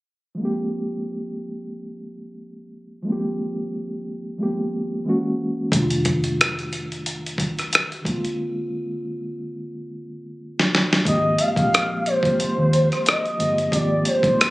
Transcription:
0.35 reed electric piano F3 G#3
0.40 reed electric piano A#3 C4
0.45 reed electric piano G4
3.03 reed electric piano F3 G#3
3.08 reed electric piano A#3 C4
3.12 reed electric piano G4
4.38 reed electric piano F3 G#3 A#3 B3
4.43 reed electric piano G4
4.48 reed electric piano C4
5.05 reed electric piano E3 G#3 A#3 C#4
5.09 reed electric piano F#4
5.69 fingered electric bass F1, reed electric piano D#3 G3, kick
5.73 reed electric piano A3 D4, closed hi-hat
5.79 reed electric piano F4
5.90 closed hi-hat
6.05 kick, closed hi-hat
6.24 closed hi-hat
6.41 cross-stick, closed hi-hat
6.59 closed hi-hat
6.73 closed hi-hat
6.92 closed hi-hat
7.06 closed hi-hat
7.26 closed hi-hat
7.38 kick, closed hi-hat
7.59 cross-stick, closed hi-hat
7.73 cross-stick, closed hi-hat
7.92 closed hi-hat
8.02 reed electric piano D3 G#3, kick
8.06 reed electric piano A#3 C4, closed hi-hat
8.11 reed electric piano F4
8.25 closed hi-hat
10.59 snare
10.75 snare
10.93 snare
11.04 fingered electric bass G#1, reed electric piano F3 G#3 A#3 C4, soft synth lead D#5, kick, closed hi-hat
11.09 reed electric piano G4
11.38 soft synth lead F5, closed hi-hat
11.55 fingered electric bass A#1, reed electric piano F3 G#3 A#3 C4, kick, closed hi-hat
11.60 reed electric piano G4
11.74 cross-stick, closed hi-hat
12.06 soft synth lead C5, closed hi-hat
12.22 reed electric piano F3 G#3 A#3 C4, kick, closed hi-hat
12.27 reed electric piano G4
12.40 muted fingered electric bass stroke, closed hi-hat
12.58 fingered electric bass D#2
12.73 closed hi-hat
12.92 cross-stick, closed hi-hat
13.06 soft synth lead D#5, cross-stick, closed hi-hat
13.26 closed hi-hat
13.37 fingered electric bass G1, reed electric piano F3 G#3 A#3 C4, closed hi-hat
13.42 reed electric piano G4
13.58 closed hi-hat
13.71 fingered electric bass G#1, reed electric piano F3 G#3 A#3 C4, soft synth lead D5, kick, closed hi-hat
13.76 reed electric piano G4
14.05 soft synth lead C5, closed hi-hat
14.23 fingered electric bass A#1, reed electric piano F3 G#3 A#3 C4, kick, closed hi-hat
14.28 reed electric piano D#4
14.41 cross-stick, closed hi-hat

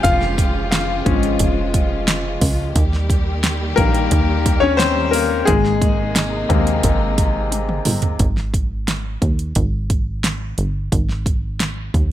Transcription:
Already playing: string section C#3 F3 G#3 F4, upright piano F4 G4 G#4 G5 G#5
0.03 analog synth bass F1, upright piano F4 F5, kick, closed hi-hat
0.21 snare
0.38 kick, closed hi-hat
0.71 upright piano F4 F5, snare, closed hi-hat
1.05 analog synth bass G#1, upright piano F3 G#3 C#4, kick, closed hi-hat
1.23 closed hi-hat
1.39 analog synth bass F1, kick, closed hi-hat
1.74 kick, closed hi-hat
2.08 snare, closed hi-hat
2.41 analog synth bass C#2, kick, open hi-hat
2.76 analog synth bass D#2, string section D#3 G3 A#3 G4, kick, closed hi-hat
2.93 snare
3.10 kick, closed hi-hat
3.44 snare, closed hi-hat
3.76 analog synth bass A#1, upright piano D#3 G3 A#3 A#4, kick, closed hi-hat
3.94 closed hi-hat
4.11 analog synth bass D#2, kick, closed hi-hat
4.46 kick, closed hi-hat
4.60 upright piano C#4 C#5
4.77 upright piano C4 C5, snare, closed hi-hat
5.11 upright piano A#3 A#4, open hi-hat
5.45 analog synth bass G#1, string section C3 G#3 A#3 D#4, upright piano G#3 G#4, kick, closed hi-hat
5.65 snare
5.82 kick, closed hi-hat
6.16 snare, closed hi-hat
6.49 analog synth bass D#2, upright piano C3 G#3 A#3, kick, closed hi-hat
6.67 closed hi-hat
6.83 analog synth bass G#1, kick, closed hi-hat
7.18 kick, closed hi-hat
7.52 closed hi-hat, high tom
7.69 mid tom
7.85 analog synth bass G1, mid tom, open hi-hat
8.02 closed hi-hat, floor tom
8.19 analog synth bass G#1, kick, closed hi-hat
8.37 snare
8.54 kick, closed hi-hat
8.88 snare, closed hi-hat
9.22 analog synth bass D#2, kick, closed hi-hat
9.39 closed hi-hat
9.55 analog synth bass G#1, kick, closed hi-hat
9.90 kick, closed hi-hat
10.24 snare, closed hi-hat
10.58 analog synth bass G1, closed hi-hat
10.92 analog synth bass G#1, kick, closed hi-hat
11.09 snare
11.26 kick, closed hi-hat
11.60 snare, closed hi-hat
11.94 analog synth bass D#2, kick, closed hi-hat

